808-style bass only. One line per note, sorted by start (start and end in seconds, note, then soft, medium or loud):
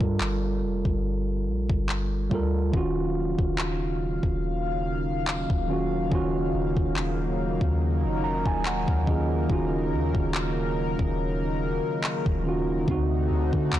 0.01 0.19 G2 loud
0.20 0.64 G1 loud
0.63 0.84 F1 loud
0.85 1.49 G1 loud
1.47 1.69 A#1 loud
1.70 2.29 G1 loud
2.31 2.72 D2 loud
2.74 3.36 D#1 loud
3.39 4.20 D#1 loud
4.23 5.46 D#1 medium
5.50 6.09 D#1 loud
6.12 6.52 D#1 loud
6.54 6.76 D#1 loud
6.77 6.95 D#1 loud
6.97 7.59 D#1 loud
7.61 8.05 D#2 medium
8.04 8.44 F1 loud
8.46 8.86 D#1 medium
8.88 9.47 D#2 medium
9.50 9.94 D#1 loud
9.92 10.14 D#2 loud
10.15 10.96 D#1 loud
10.99 11.80 D#1 loud
12.26 12.85 D#1 medium
12.88 13.28 D2 loud
13.31 13.52 D2 loud
13.53 13.72 D3 loud
13.73 13.79 D2 loud